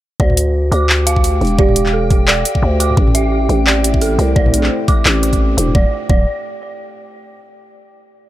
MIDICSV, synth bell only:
0, 0, Header, 1, 2, 480
1, 0, Start_track
1, 0, Key_signature, -1, "minor"
1, 0, Tempo, 346821
1, 275, Time_signature, 4, 2, 24, 8
1, 11479, End_track
2, 0, Start_track
2, 0, Title_t, "Synth bell"
2, 0, Program_c, 0, 98
2, 277, Note_on_c, 0, 74, 100
2, 428, Note_off_c, 0, 74, 0
2, 566, Control_c, 0, 64, 127
2, 999, Note_on_c, 0, 86, 102
2, 1457, Note_off_c, 0, 86, 0
2, 1475, Note_on_c, 0, 77, 103
2, 2174, Note_off_c, 0, 77, 0
2, 2193, Note_on_c, 0, 74, 82
2, 2424, Note_off_c, 0, 74, 0
2, 2676, Note_on_c, 0, 69, 77
2, 3135, Note_off_c, 0, 69, 0
2, 3154, Note_on_c, 0, 74, 101
2, 3307, Note_off_c, 0, 74, 0
2, 3874, Note_on_c, 0, 86, 104
2, 4115, Note_off_c, 0, 86, 0
2, 4136, Control_c, 0, 64, 0
2, 4356, Note_on_c, 0, 76, 99
2, 4360, Control_c, 0, 64, 127
2, 5055, Note_off_c, 0, 76, 0
2, 5077, Note_on_c, 0, 74, 82
2, 5306, Note_off_c, 0, 74, 0
2, 5558, Note_on_c, 0, 69, 76
2, 6016, Note_off_c, 0, 69, 0
2, 6033, Note_on_c, 0, 74, 101
2, 6186, Note_off_c, 0, 74, 0
2, 6757, Note_on_c, 0, 86, 101
2, 7215, Note_off_c, 0, 86, 0
2, 7242, Note_on_c, 0, 86, 79
2, 7469, Note_off_c, 0, 86, 0
2, 7956, Note_on_c, 0, 74, 91
2, 7975, Control_c, 0, 64, 0
2, 8102, Note_off_c, 0, 74, 0
2, 8439, Note_on_c, 0, 74, 92
2, 8661, Note_off_c, 0, 74, 0
2, 11479, End_track
0, 0, End_of_file